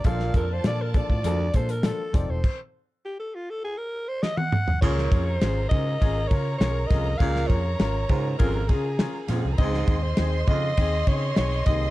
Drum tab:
CC |----------------|x---------------|x---------------|----------------|
RD |----------------|----------------|--x-x-x-x-x-x-x-|x-x-x-x-x-x-x-x-|
HH |x-x-x-x-x-xxx-x-|----------------|----------------|----------------|
SD |-o--o-------o-o-|------------o---|-o--o-------o-o-|-o--o-------o-o-|
T1 |----------------|-------------o--|----------------|----------------|
T2 |----------------|--------------o-|----------------|----------------|
FT |----------------|---------------o|----------------|----------------|
BD |o-o---oo--o---o-|o---------------|o-o---o-o-o---o-|o-o---o-o-o-----|

CC |----------------|
RD |x-x-x-x-x-x-x-x-|
HH |----------------|
SD |-o--o-------o-o-|
T1 |----------------|
T2 |----------------|
FT |----------------|
BD |o-o---o-o-o---o-|